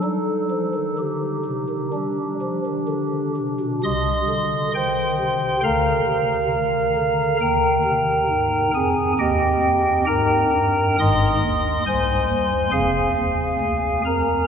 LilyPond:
<<
  \new Staff \with { instrumentName = "Pipe organ" } { \time 4/4 \key c \minor \tempo 4 = 67 a'4 g'2~ g'8 r8 | <ees'' c''' ees'''>4 <c'' g'' c'''>4 <bes' f'' bes''>2 | <bes' g'' bes''>4. <aes' aes''>8 <g' ees'' g''>4 <bes' g'' bes''>4 | <ees'' c''' ees'''>4 <c'' aes'' c'''>4 <aes' f'' aes''>4. <bes' bes''>8 | }
  \new Staff \with { instrumentName = "Pipe organ" } { \clef bass \time 4/4 \key c \minor << { ees'2 d'2 | c,8 r4. d,8 r4. | ees,8 r2. r8 | aes,,8 r4. f,,8 r4. | } \\ { g8 f16 ees16 d8 c16 ees16 g8 f16 ees16 d8 c16 b,16 | c8 d8 ees8 c8 d8 c8 ees8 d8 | ees8 c8 aes,8 f,8 ees,8 f,8 aes,8 g,8 | aes,8 ees,8 c,8 ees,8 f,8 ees,8 d,8 f,8 | } >> }
>>